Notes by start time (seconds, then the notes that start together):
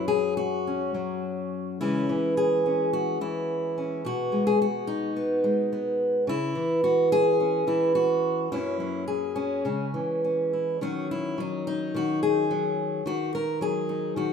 Already playing: F#2 F#3
0.08 G#4
0.37 F#4
0.67 C#4
0.94 F#3
1.81 C#3 E3 G#3 C#4 E4
2.09 E3
2.37 G#4
2.66 C#4
2.93 F#4
3.21 E3 E4
3.78 C#4
4.05 B2 F#4
4.32 G#3
4.47 G#4
4.62 F#4
4.87 D#4
5.16 B3
5.44 G#3
5.73 B3
6.27 C#3 E4
6.55 E3
6.84 F#4
7.12 G#4
7.40 C#4
7.67 E3 E4
7.95 F#4
8.52 F#2 F#3 A#3 C#4 E4
8.80 F#3
9.08 G#4
9.36 C#4
9.65 C#3 G#3
9.94 E3
10.24 C#4
10.53 E4
10.81 D#3 F#3 C#4 F#4
11.11 E4
11.38 F#3 D#4
11.67 D#4
11.94 D#3 F#4
12.23 G#4
12.51 F#3
13.06 D#3 F#4
13.35 A#4
13.61 F#3 G#4
13.89 D#4
14.16 D#3 F#4